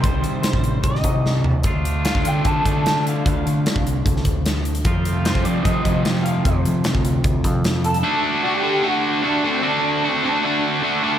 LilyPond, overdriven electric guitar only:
\new Staff \with { instrumentName = "Overdriven electric guitar" } { \time 4/4 \key d \phrygian \tempo 4 = 150 <c ees g c' g'>1 | <d a d' f'>1~ | <d a d' f'>1 | <f, c f a c' f'>1~ |
<f, c f a c' f'>1 | <d a d' fis'>4 <d a d' fis'>8 <d a d' fis'>8 <d a d' fis'>4 <d a d' fis'>8 <d a d' fis'>8 | <d a d' fis'>4 <d a d' fis'>8 <d a d' fis'>8 <d a d' fis'>4 <d a d' fis'>8 <d a d' fis'>8 | }